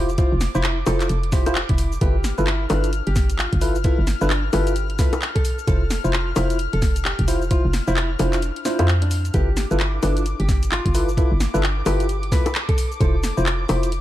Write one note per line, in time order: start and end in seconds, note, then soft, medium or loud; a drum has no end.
0.00 0.27 F1 loud
0.00 2.02 D6 medium
0.09 shaker soft
0.18 0.32 E4 medium
0.18 0.32 F4 medium
0.18 0.40 F4 medium
0.18 0.32 C5 medium
0.18 kick loud
0.18 closed hi-hat medium
0.18 shaker soft
0.32 0.48 F1 medium
0.41 snare medium
0.41 open hi-hat loud
0.41 shaker medium
0.55 0.83 F1 medium
0.55 0.64 E4 loud
0.55 0.76 E4 loud
0.55 0.64 F4 medium
0.55 0.64 C5 loud
0.55 shaker soft
0.64 clap loud
0.64 shaker soft
0.87 1.09 F1 medium
0.87 1.06 E4 medium
0.87 1.06 F4 medium
0.87 1.17 A4 medium
0.87 1.06 C5 loud
0.87 open hi-hat loud
0.87 high bongo medium
0.87 shaker medium
1.00 clap medium
1.00 closed hi-hat medium
1.00 shaker soft
1.09 1.64 F1 medium
1.09 closed hi-hat medium
1.09 shaker soft
1.23 closed hi-hat soft
1.32 1.44 E4 medium
1.32 1.44 F4 medium
1.32 1.55 G4 medium
1.32 1.44 C5 loud
1.32 kick loud
1.32 snare medium
1.32 open hi-hat loud
1.32 shaker medium
1.46 1.56 E4 medium
1.46 1.56 F4 medium
1.46 1.56 C5 loud
1.46 closed hi-hat medium
1.46 high bongo medium
1.46 shaker soft
1.55 clap loud
1.55 shaker soft
1.69 1.98 F1 medium
1.69 1.91 E4 medium
1.69 kick loud
1.69 closed hi-hat medium
1.78 open hi-hat loud
1.78 shaker medium
1.92 shaker soft
2.01 2.33 G1 loud
2.01 2.16 E4 medium
2.01 2.16 F4 medium
2.01 2.31 G4 loud
2.01 2.15 A4 medium
2.01 2.16 B4 medium
2.01 9.35 F6 medium
2.01 kick loud
2.01 closed hi-hat medium
2.01 shaker soft
2.24 snare medium
2.24 open hi-hat loud
2.24 shaker medium
2.38 2.67 G1 medium
2.38 2.47 E4 medium
2.38 2.47 F4 medium
2.38 2.47 A4 medium
2.38 2.47 B4 loud
2.38 shaker soft
2.47 2.63 E4 medium
2.47 clap loud
2.47 shaker soft
2.70 3.02 G1 loud
2.70 2.92 D4 medium
2.70 2.90 E4 medium
2.70 2.90 F4 medium
2.70 2.90 A4 medium
2.70 2.90 B4 medium
2.70 open hi-hat loud
2.70 high bongo medium
2.70 shaker medium
2.84 closed hi-hat medium
2.84 shaker soft
2.93 closed hi-hat medium
2.93 shaker soft
3.07 3.47 G1 medium
3.07 3.28 G4 medium
3.07 closed hi-hat soft
3.16 kick loud
3.16 snare medium
3.16 open hi-hat loud
3.16 shaker medium
3.30 closed hi-hat medium
3.30 shaker soft
3.39 3.69 F4 loud
3.39 clap loud
3.39 shaker soft
3.53 3.93 G1 loud
3.53 kick medium
3.53 closed hi-hat medium
3.61 3.76 E4 medium
3.61 3.76 F4 medium
3.61 3.76 A4 medium
3.61 3.76 B4 loud
3.61 open hi-hat loud
3.61 shaker medium
3.75 shaker soft
3.84 4.06 E4 loud
3.84 3.99 E4 medium
3.84 3.99 F4 medium
3.84 3.99 A4 medium
3.84 3.99 B4 medium
3.84 kick loud
3.84 closed hi-hat medium
3.84 shaker soft
3.98 4.15 G1 medium
4.07 snare medium
4.07 open hi-hat loud
4.07 shaker medium
4.21 4.50 G1 medium
4.21 4.43 D4 loud
4.21 4.31 E4 loud
4.21 4.31 F4 medium
4.21 4.31 A4 medium
4.21 4.31 B4 loud
4.21 shaker soft
4.30 clap loud
4.30 shaker soft
4.53 5.00 G1 medium
4.53 4.73 E4 medium
4.53 4.73 F4 medium
4.53 4.83 G4 loud
4.53 4.73 A4 medium
4.53 4.73 B4 loud
4.53 open hi-hat loud
4.53 high bongo medium
4.53 shaker medium
4.67 closed hi-hat medium
4.67 shaker soft
4.76 closed hi-hat medium
4.76 shaker soft
4.90 closed hi-hat soft
4.99 5.10 D2 medium
4.99 5.13 E4 medium
4.99 5.13 F4 medium
4.99 5.13 A4 medium
4.99 5.21 B4 loud
4.99 5.13 B4 medium
4.99 kick loud
4.99 snare medium
4.99 open hi-hat loud
4.99 shaker medium
5.13 closed hi-hat medium
5.13 high bongo medium
5.13 shaker soft
5.22 clap loud
5.22 shaker soft
5.35 5.57 A4 medium
5.35 kick loud
5.35 closed hi-hat medium
5.45 open hi-hat loud
5.45 shaker medium
5.59 shaker soft
5.67 5.99 F1 loud
5.67 5.82 E4 medium
5.67 5.82 F4 medium
5.67 5.98 A4 loud
5.67 5.82 C5 medium
5.67 kick loud
5.67 closed hi-hat medium
5.67 shaker soft
5.90 snare medium
5.90 open hi-hat loud
5.90 shaker medium
6.04 6.33 F1 medium
6.04 6.14 E4 medium
6.04 6.14 F4 medium
6.04 6.14 C5 loud
6.04 shaker soft
6.13 6.30 F4 medium
6.13 clap loud
6.13 shaker soft
6.36 6.68 F1 medium
6.36 6.58 E4 medium
6.36 6.56 E4 medium
6.36 6.56 F4 medium
6.36 6.56 C5 medium
6.36 open hi-hat loud
6.36 high bongo medium
6.36 shaker medium
6.50 closed hi-hat medium
6.50 shaker soft
6.59 closed hi-hat medium
6.59 shaker soft
6.73 7.14 F1 medium
6.73 6.95 A4 loud
6.73 closed hi-hat soft
6.82 kick loud
6.82 snare medium
6.82 open hi-hat loud
6.82 shaker medium
6.96 closed hi-hat medium
6.96 shaker soft
7.05 7.35 G4 medium
7.05 clap loud
7.05 shaker soft
7.19 7.60 F1 loud
7.19 kick medium
7.19 closed hi-hat medium
7.28 7.42 E4 medium
7.28 7.42 F4 medium
7.28 7.42 C5 loud
7.28 open hi-hat loud
7.28 shaker medium
7.42 shaker soft
7.51 7.65 E4 medium
7.51 7.73 F4 loud
7.51 7.65 F4 medium
7.51 7.65 C5 medium
7.51 kick loud
7.51 closed hi-hat medium
7.51 shaker soft
7.65 7.81 F1 medium
7.73 snare medium
7.73 open hi-hat loud
7.73 shaker medium
7.87 8.16 F1 medium
7.87 8.09 E4 medium
7.87 7.97 E4 loud
7.87 7.97 F4 medium
7.87 7.97 C5 loud
7.87 shaker soft
7.97 clap loud
7.97 shaker soft
8.19 8.51 F1 loud
8.19 8.50 D4 medium
8.19 8.39 E4 medium
8.19 8.39 F4 medium
8.19 8.39 C5 loud
8.19 open hi-hat loud
8.19 high bongo medium
8.19 shaker medium
8.33 clap medium
8.33 closed hi-hat medium
8.33 shaker soft
8.42 closed hi-hat medium
8.42 shaker soft
8.56 closed hi-hat soft
8.65 8.87 D4 medium
8.65 8.77 E4 medium
8.65 8.77 F4 medium
8.65 8.77 C5 loud
8.65 snare medium
8.65 open hi-hat loud
8.65 shaker medium
8.79 9.31 F2 loud
8.79 8.89 E4 medium
8.79 8.89 F4 medium
8.79 8.89 C5 loud
8.79 closed hi-hat medium
8.79 high bongo medium
8.79 shaker soft
8.88 clap loud
8.88 shaker soft
9.02 9.23 D4 loud
9.02 closed hi-hat medium
9.11 open hi-hat loud
9.11 shaker medium
9.25 closed hi-hat soft
9.25 shaker soft
9.34 9.66 G1 loud
9.34 9.48 E4 medium
9.34 9.48 F4 medium
9.34 9.64 G4 loud
9.34 9.48 A4 medium
9.34 9.48 B4 medium
9.34 14.01 D6 medium
9.34 kick loud
9.34 closed hi-hat medium
9.34 shaker soft
9.57 snare medium
9.57 open hi-hat loud
9.57 shaker medium
9.71 9.99 G1 medium
9.71 9.80 E4 medium
9.71 9.80 F4 medium
9.71 9.80 A4 medium
9.71 9.80 B4 loud
9.71 shaker soft
9.80 9.96 E4 medium
9.80 clap loud
9.80 shaker soft
10.03 10.34 G1 medium
10.03 10.25 D4 loud
10.03 10.23 E4 medium
10.03 10.22 F4 medium
10.03 10.23 A4 medium
10.03 10.23 B4 medium
10.03 open hi-hat loud
10.03 high bongo medium
10.03 shaker medium
10.17 closed hi-hat medium
10.17 shaker soft
10.26 closed hi-hat medium
10.26 shaker soft
10.40 10.80 G1 medium
10.40 10.61 G4 medium
10.40 closed hi-hat soft
10.49 kick loud
10.49 snare medium
10.49 open hi-hat loud
10.49 shaker medium
10.63 closed hi-hat medium
10.63 shaker soft
10.72 11.02 F4 medium
10.72 clap loud
10.72 shaker soft
10.85 11.26 G1 medium
10.85 kick medium
10.85 closed hi-hat medium
10.94 11.09 E4 medium
10.94 11.09 F4 medium
10.94 11.09 A4 medium
10.94 11.09 B4 loud
10.94 open hi-hat loud
10.94 shaker medium
11.09 shaker soft
11.17 11.32 E4 medium
11.17 11.39 E4 medium
11.17 11.32 F4 medium
11.17 11.32 A4 medium
11.17 11.32 B4 medium
11.17 kick loud
11.17 closed hi-hat medium
11.17 shaker soft
11.31 11.48 G1 medium
11.40 snare medium
11.40 open hi-hat loud
11.40 shaker medium
11.54 11.83 G1 medium
11.54 11.76 D4 medium
11.54 11.63 E4 loud
11.54 11.63 F4 medium
11.54 11.63 A4 medium
11.54 11.63 B4 loud
11.54 shaker soft
11.63 clap loud
11.63 shaker soft
11.86 12.33 G1 medium
11.86 12.06 E4 medium
11.86 12.06 F4 medium
11.86 12.16 G4 medium
11.86 12.06 A4 medium
11.86 12.06 B4 loud
11.86 open hi-hat loud
11.86 high bongo medium
11.86 shaker medium
12.00 closed hi-hat medium
12.00 shaker soft
12.09 closed hi-hat medium
12.09 shaker soft
12.23 closed hi-hat soft
12.32 12.42 D2 medium
12.32 12.46 E4 medium
12.32 12.46 F4 medium
12.32 12.46 A4 medium
12.32 12.54 B4 loud
12.32 12.46 B4 medium
12.32 kick loud
12.32 snare medium
12.32 open hi-hat loud
12.32 shaker medium
12.46 closed hi-hat medium
12.46 high bongo medium
12.46 shaker soft
12.55 clap loud
12.55 shaker soft
12.69 12.90 A4 loud
12.69 kick loud
12.69 closed hi-hat medium
12.78 open hi-hat loud
12.78 shaker medium
12.92 shaker soft
13.00 13.32 F1 loud
13.00 13.15 E4 medium
13.00 13.15 F4 medium
13.00 13.31 A4 loud
13.00 13.15 C5 medium
13.00 kick loud
13.00 closed hi-hat medium
13.00 shaker soft
13.24 snare medium
13.24 open hi-hat loud
13.24 shaker medium
13.37 13.66 F1 medium
13.37 13.47 E4 medium
13.37 13.47 F4 medium
13.37 13.47 C5 loud
13.37 shaker soft
13.46 13.62 F4 medium
13.46 clap loud
13.46 shaker soft
13.69 14.01 F1 loud
13.69 13.91 E4 medium
13.69 13.89 E4 medium
13.69 13.89 F4 medium
13.69 13.89 C5 medium
13.69 open hi-hat loud
13.69 high bongo medium
13.69 shaker medium
13.83 closed hi-hat medium
13.83 shaker soft
13.92 closed hi-hat medium
13.92 shaker soft